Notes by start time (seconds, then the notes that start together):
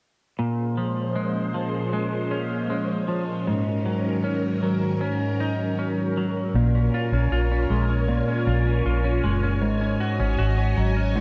0.38 A#2 F3 G#3 C#4 C5
0.77 F3
1.16 G#3
1.54 F3
1.93 G#3
2.31 C#4
2.70 G#3
3.08 F3
3.46 G#2 D#3 F#3 A#4
3.86 F#3
4.24 C#4
4.63 F#3
5.01 C#4
5.40 D#4
5.79 C#4
6.17 F#3
6.54 A#1 A#2 F4 A#4 C#5 G#5
6.75 C#4
6.94 F4
7.12 A#1 C#4
7.31 A#1 F4
7.52 C#4
7.70 A#1 G#3
7.90 C#4
8.08 A#2
8.28 C#4
8.47 A#1 F4
8.67 C#4
8.85 A#1 F4
9.04 C#4
9.24 F#1 G#3
9.43 C#4
9.62 G#1 G#2 F#4 D#5
9.81 C#4
10.00 F#4
10.20 G#1 C#4
10.38 G#1 F#4
10.58 C#4
10.77 G#1 F#3
10.96 C#4
11.16 G#2